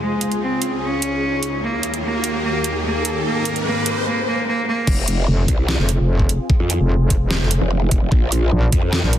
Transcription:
Already playing: supersaw synth G#3 F4, ambient pad F4 G#4 G#5, riser
0.01 supersaw synth C#2 C#3 G#4, cello G#3
0.12 ambient pad C#5
0.21 closed hi-hat
0.32 closed hi-hat
0.41 cello C4
0.62 closed hi-hat
0.82 cello C#4
1.02 closed hi-hat
1.43 closed hi-hat
1.63 supersaw synth D#2 D#3 A#3 G4 A#4, cello A#3, ambient pad D#4 G4
1.83 closed hi-hat
1.94 closed hi-hat
2.03 cello A#3, ambient pad A#4
2.24 closed hi-hat
2.44 cello A#3
2.64 closed hi-hat
2.85 cello A#3
3.05 closed hi-hat
3.25 supersaw synth G#2 C4 G#4 D#5, cello A#3
3.45 closed hi-hat
3.56 closed hi-hat
3.66 cello A#3
3.86 closed hi-hat
4.06 cello A#3
4.27 cello A#3
4.47 cello A#3
4.67 cello A#3
4.87 wobble bass F1, supersaw synth C4 F4 G#4, ambient pad F4, kick, crash
5.08 closed hi-hat
5.28 wobble bass F1
5.48 wobble bass C2, kick, closed hi-hat
5.69 snare
5.79 wobble bass F1
5.89 closed hi-hat
5.99 wobble bass F1
6.20 kick
6.29 closed hi-hat
6.50 kick
6.60 wobble bass F2
6.70 closed hi-hat
6.80 wobble bass F1
7.10 kick, closed hi-hat
7.22 wobble bass E1
7.31 snare
7.41 wobble bass F1
7.51 closed hi-hat
7.61 wobble bass F1
7.91 kick, closed hi-hat
8.02 wobble bass F1
8.12 wobble bass A#1, supersaw synth C#4 F4 A#4, kick
8.32 closed hi-hat
8.39 ambient pad A#4
8.52 wobble bass A#1
8.59 ambient pad C#5
8.72 wobble bass F2, kick, closed hi-hat
8.82 ambient pad A#5
8.93 snare
9.03 wobble bass A#1
9.13 closed hi-hat

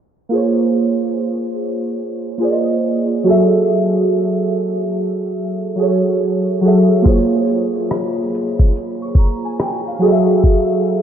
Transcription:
0.29 synth keys A#3 F4 G#4
0.34 synth keys C5 C#5
2.38 synth keys A#3 F4 G#4
2.43 synth keys C5 D5
2.51 synth keys D#5
3.24 synth keys F#3 F#4 G#4
3.28 synth keys A4 E5
5.76 synth keys F#3 F#4 G#4
5.80 synth keys A4 C#5
6.61 synth keys F#3 F#4 G#4
6.66 synth keys A4 E5
7.02 synth keys A#3 F4 G#4, kick
7.06 synth keys C5 C#5, closed hi-hat
7.48 closed hi-hat
7.75 closed hi-hat
7.91 cross-stick, closed hi-hat
8.35 closed hi-hat
8.59 kick
8.76 closed hi-hat
9.02 synth keys C#6
9.15 synth keys A#5, kick, closed hi-hat
9.45 synth keys G#5
9.60 synth keys G5, cross-stick, closed hi-hat
9.87 synth keys F5
9.99 synth keys F#3 F#4 G#4, closed hi-hat
10.04 synth keys A4 D#5
10.12 synth keys E5
10.44 kick, closed hi-hat
10.86 closed hi-hat

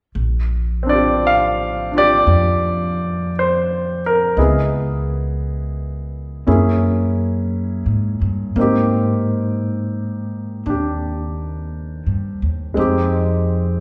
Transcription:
0.15 upright bass A#1
0.83 grand piano C4 D4
0.89 grand piano F4 D5
0.94 grand piano G4
1.27 grand piano F5
1.92 grand piano D4 F4
1.97 grand piano G4 D5
2.27 upright bass F2
3.39 grand piano C5
4.06 grand piano A#4
4.37 upright bass C#2, grand piano B3 E4 G#4 D#5
4.41 grand piano B3
6.46 upright bass F#2, grand piano A#3 C#4 E4 G#4
7.86 upright bass G#2
8.22 upright bass G2
8.56 upright bass G#2, grand piano A#3 C4 D#4
8.61 grand piano G4
10.66 upright bass D#2, grand piano D4 G4
12.06 upright bass G2
12.42 upright bass D#2
12.74 upright bass F2, grand piano G#3 C4 D#4
12.79 grand piano G4

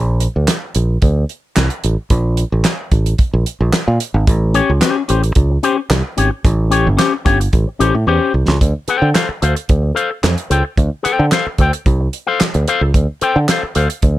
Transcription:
Already playing: fingered electric bass A#1
0.20 closed hi-hat
0.36 fingered electric bass D2
0.48 snare, clap, closed hi-hat
0.75 fingered electric bass A#1, closed hi-hat
1.02 fingered electric bass D2, kick, closed hi-hat
1.29 closed hi-hat
1.56 fingered electric bass C2, snare, clap, closed hi-hat
1.70 closed hi-hat
1.84 fingered electric bass A1, closed hi-hat
2.10 fingered electric bass A#1, kick, closed hi-hat
2.37 closed hi-hat
2.52 fingered electric bass A1
2.64 snare, clap, closed hi-hat
2.92 fingered electric bass A1, kick, closed hi-hat
3.06 closed hi-hat
3.19 kick, closed hi-hat
3.33 fingered electric bass A#1
3.46 closed hi-hat
3.60 fingered electric bass A#1
3.73 snare, clap, closed hi-hat
3.88 fingered electric bass A#2
4.00 closed hi-hat
4.14 fingered electric bass G#1
4.27 fingered electric bass A1, kick, closed hi-hat
4.54 clean electric guitar C#4 G4 C#5, closed hi-hat
4.70 fingered electric bass C#2
4.81 clean electric guitar C#4 G4 C5, snare, clap, closed hi-hat
4.96 muted clean electric guitar stroke
5.08 fingered electric bass A1, clean electric guitar C#4 G4 C5, closed hi-hat
5.23 muted clean electric guitar stroke, closed hi-hat
5.35 fingered electric bass C#2, kick, closed hi-hat
5.50 muted clean electric guitar stroke
5.63 clean electric guitar C#4 G4 C5, closed hi-hat
5.77 muted clean electric guitar stroke
5.90 fingered electric bass C2, muted clean electric guitar stroke, snare, clap, closed hi-hat
6.17 fingered electric bass G#1, clean electric guitar C#4 G4 C#5, closed hi-hat
6.31 muted clean electric guitar stroke
6.45 fingered electric bass A1, kick, closed hi-hat
6.70 clean electric guitar C#4 G4 C#5, closed hi-hat
6.87 fingered electric bass G1
6.97 clean electric guitar C#4 G4 C5, snare, clap, closed hi-hat
7.13 muted clean electric guitar stroke
7.25 fingered electric bass G1, clean electric guitar C#4 G4 C#5, kick, closed hi-hat
7.40 muted clean electric guitar stroke, closed hi-hat
7.53 fingered electric bass A1, kick, closed hi-hat
7.67 muted clean electric guitar stroke
7.79 fingered electric bass A1, clean electric guitar C#4 G4 C5, closed hi-hat
7.95 fingered electric bass A2, muted clean electric guitar stroke
8.07 fingered electric bass E2, clean electric guitar C#4 G4 C5
8.34 fingered electric bass C2
8.48 fingered electric bass C#2, muted clean electric guitar stroke, snare
8.61 fingered electric bass D2, kick, closed hi-hat
8.88 clean electric guitar A4 C5 G5, muted fingered electric bass stroke, closed hi-hat
9.02 fingered electric bass D3
9.14 clean electric guitar A4 C5 F5, snare, clap, closed hi-hat
9.29 muted fingered electric bass stroke, muted clean electric guitar stroke
9.42 fingered electric bass D2, clean electric guitar A4 C5 F5, closed hi-hat
9.55 muted clean electric guitar stroke, closed hi-hat
9.69 fingered electric bass D2, kick, closed hi-hat
9.82 muted clean electric guitar stroke
9.95 clean electric guitar A4 C5 F5, closed hi-hat
10.11 muted clean electric guitar stroke
10.23 fingered electric bass F2, muted clean electric guitar stroke, snare, clap, closed hi-hat
10.38 closed hi-hat
10.50 fingered electric bass C#2, clean electric guitar A4 C5 G5, closed hi-hat
10.65 muted clean electric guitar stroke
10.78 fingered electric bass D2, kick, closed hi-hat
11.03 clean electric guitar A4 C5 G5, muted fingered electric bass stroke, closed hi-hat
11.19 fingered electric bass D3
11.32 clean electric guitar A4 C5 F5, snare, clap, closed hi-hat
11.47 muted fingered electric bass stroke, muted clean electric guitar stroke
11.58 fingered electric bass D2, clean electric guitar A4 C5 G5, kick, closed hi-hat
11.73 muted clean electric guitar stroke, closed hi-hat
11.86 fingered electric bass C2, muted clean electric guitar stroke, kick, closed hi-hat
12.01 muted clean electric guitar stroke
12.13 closed hi-hat
12.27 clean electric guitar A4 C5 F5
12.40 muted fingered electric bass stroke, snare, clap, closed hi-hat
12.54 fingered electric bass D2, muted clean electric guitar stroke, closed hi-hat
12.68 clean electric guitar A4 C5 F5, closed hi-hat
12.81 fingered electric bass C#2, muted clean electric guitar stroke
12.94 fingered electric bass D2, kick, closed hi-hat
13.21 clean electric guitar A4 C5 G5, muted fingered electric bass stroke, closed hi-hat
13.36 fingered electric bass D3
13.48 clean electric guitar A4 C5 F5, snare, clap, closed hi-hat
13.63 muted clean electric guitar stroke, muted fingered electric bass stroke
13.75 fingered electric bass D2, clean electric guitar A4 C5 F5, closed hi-hat
13.89 muted clean electric guitar stroke, closed hi-hat
14.02 fingered electric bass D2, kick, closed hi-hat

